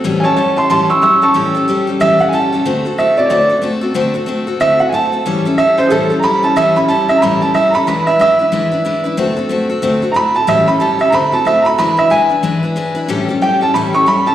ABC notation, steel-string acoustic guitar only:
X:1
M:4/4
L:1/8
Q:"Swing" 1/4=184
K:Amix
V:1 name="Steel-string acoustic guitar"
[A,,E,G,CGA] [G,CGA] [G,CGA] [G,CGA] [A,,E,G,CGA] [G,CGA] [G,CGA] [G,CGA] | [A,,E,G,CGA] [G,CGA] [G,CGA] [G,CGA] [A,,E,G,CGA] [G,CGA] [G,CGA] [G,CGA] | [D,A,=CFA] [CFA] [A,CFA] [CFA] [D,A,CFA] [CFA] [A,CFA] [CFA] | [D,A,=CFA] [CFA] [A,CFA] [CFA] [D,A,CFA] [CFA] [A,CFA] [CFA] |
[A,,E,G,CEA] [G,CEA] [G,CEA] [G,CEA] [A,,E,G,CEA] [G,CEA] [G,CEA] [G,CEA] | [A,,E,G,CEA] [G,CEA] [G,CEA] [G,CEA] [A,,E,G,CEA] [G,CEA] [G,CEA] [G,CEA] | [E,^G,DEB] [DEB] [G,DEB] [DEB] [E,G,DEB] [DEB] [G,DEB] [DEB] | [D,A,=CFA] [CFA] [A,CFA] [CFA] [D,A,CFA] [CFA] [A,CFA] [CFA] |
[A,,E,G,CGA] [G,CGA] [G,CGA] [G,CGA] [D,A,=CFA] [CFA] [A,CFA] [CFA] | [E,^G,DEB] [DEB] [G,DEB] [DEB] [E,G,DEB] [DEB] [G,DEB] [DEB] | [A,,E,G,CGA] [G,CGA] [G,CGA] [G,CGA] [A,,E,G,CGA] [G,CGA] [G,CGA] [G,CGA] |]